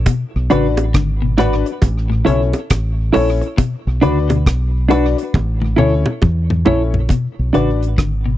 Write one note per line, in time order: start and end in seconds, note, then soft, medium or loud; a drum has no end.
0.06 0.23 B2 medium
0.06 kick loud
0.06 closed hi-hat loud
0.06 high bongo medium
0.36 0.50 B1 loud
0.50 0.92 A1 loud
0.50 0.67 C#3 medium
0.50 0.76 D4 loud
0.50 0.66 D4 medium
0.50 0.76 F#4 medium
0.50 0.66 F#4 medium
0.50 0.76 B4 medium
0.50 0.66 B4 loud
0.50 0.76 D5 loud
0.50 closed hi-hat medium
0.77 closed hi-hat medium
0.77 high bongo medium
0.94 1.62 G#1 medium
0.94 1.11 D3 medium
0.94 kick loud
0.94 cross-stick loud
0.94 closed hi-hat medium
1.22 1.32 B2 medium
1.38 1.54 A2 medium
1.38 1.54 D4 medium
1.38 1.64 D4 loud
1.38 1.64 F#4 medium
1.38 1.54 F#4 loud
1.38 1.64 B4 loud
1.38 1.54 B4 loud
1.38 1.64 D5 loud
1.38 cross-stick medium
1.38 closed hi-hat medium
1.38 low bongo medium
1.66 1.73 B4 soft
1.66 1.73 D5 soft
1.66 closed hi-hat medium
1.82 2.23 A1 loud
1.82 kick loud
1.82 closed hi-hat medium
1.82 high bongo medium
2.10 2.19 A2 medium
2.25 2.52 B1 loud
2.25 2.42 C#3 medium
2.25 2.52 C#4 medium
2.25 2.41 E4 medium
2.25 2.52 E4 medium
2.25 2.42 A4 medium
2.25 2.52 A4 medium
2.25 2.42 C#5 loud
2.25 2.52 C#5 medium
2.25 closed hi-hat medium
2.53 closed hi-hat soft
2.53 high bongo medium
2.70 3.11 A1 medium
2.70 kick loud
2.70 cross-stick loud
2.70 closed hi-hat loud
2.70 high bongo medium
3.13 3.41 A#1 medium
3.13 3.40 C#4 medium
3.13 3.29 E4 medium
3.13 3.40 E4 medium
3.13 3.29 A4 medium
3.13 3.40 A4 medium
3.13 3.29 C#5 loud
3.13 3.40 C#5 loud
3.13 open hi-hat medium
3.13 low bongo medium
3.41 muted clean electric guitar stroke soft
3.41 closed hi-hat medium
3.57 3.74 B2 medium
3.57 kick loud
3.57 closed hi-hat loud
3.57 high bongo medium
3.87 4.01 B1 loud
4.01 4.44 D2 loud
4.01 4.18 C#3 medium
4.01 4.17 D4 medium
4.01 4.27 D4 loud
4.01 4.28 F#4 medium
4.01 4.18 F#4 medium
4.01 4.28 B4 loud
4.01 4.18 B4 medium
4.01 4.28 D5 loud
4.01 closed hi-hat medium
4.29 4.39 B2 medium
4.29 closed hi-hat medium
4.29 high bongo medium
4.46 5.14 B1 medium
4.46 kick medium
4.46 cross-stick loud
4.46 closed hi-hat medium
4.88 5.05 D4 loud
4.88 5.15 D4 loud
4.88 5.05 F#4 medium
4.88 5.15 F#4 medium
4.88 5.15 B4 medium
4.88 5.06 B4 loud
4.88 5.16 D5 loud
4.88 closed hi-hat medium
4.88 low bongo medium
5.18 5.24 B4 soft
5.18 5.24 D5 soft
5.18 closed hi-hat medium
5.34 5.75 A1 loud
5.34 kick loud
5.34 high tom medium
5.34 high bongo medium
5.62 5.71 A2 medium
5.62 high tom medium
5.76 6.04 D2 loud
5.76 5.94 B2 medium
5.76 6.03 C#4 medium
5.76 5.93 E4 medium
5.76 6.04 E4 medium
5.76 5.93 A4 loud
5.76 6.04 A4 medium
5.76 5.94 C#5 medium
5.76 6.04 C#5 loud
5.76 mid tom medium
6.06 mid tom medium
6.06 high bongo medium
6.22 6.63 E2 loud
6.22 kick loud
6.22 mid tom loud
6.22 high bongo medium
6.50 mid tom medium
6.65 7.07 A#1 medium
6.65 6.91 C#4 medium
6.65 6.91 E4 medium
6.65 6.82 E4 medium
6.65 6.82 A4 medium
6.65 6.92 A4 medium
6.65 6.92 C#5 medium
6.65 6.82 C#5 loud
6.65 floor tom loud
6.65 low bongo medium
6.94 floor tom loud
7.09 7.26 B2 loud
7.09 kick loud
7.09 closed hi-hat loud
7.09 high bongo medium
7.39 7.54 B1 medium
7.53 7.96 A1 medium
7.53 7.70 C#3 medium
7.53 7.69 D4 medium
7.53 7.79 D4 loud
7.53 7.70 F#4 medium
7.53 7.80 F#4 medium
7.53 7.80 B4 medium
7.53 7.70 B4 medium
7.53 7.80 D5 loud
7.53 closed hi-hat medium
7.82 closed hi-hat medium
7.98 8.38 G#1 medium
7.98 8.14 D3 medium
7.98 kick loud
7.98 cross-stick medium
7.98 closed hi-hat medium
8.26 8.35 B2 medium